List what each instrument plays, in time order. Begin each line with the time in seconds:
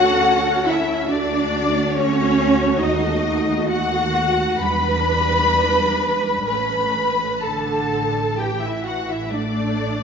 Already playing: double bass section D2, viola section C#4 A4, cello section F#4, violin section F#5
0.67 cello section E4, violin section E5
1.09 double bass section D2, viola section A3 F#4, cello section D4, violin section D5
1.96 cello section C#4, violin section C#5
2.80 double bass section D#2, cello section D#4, violin section D#5
3.68 cello section F#4, violin section F#5
4.61 double bass section E2, viola section G3 D4, cello section B4, violin section B5
6.47 double bass section A1, viola section A3 C#4, cello section B4, violin section B5
7.43 viola section D3, cello section A4, violin section A5
8.38 viola section E3, cello section G4, violin section G5
8.60 cello section E4, violin section E5
8.84 cello section F#4, violin section F#5
9.09 cello section E4, violin section E5
9.33 viola section A3, cello section D4, violin section D5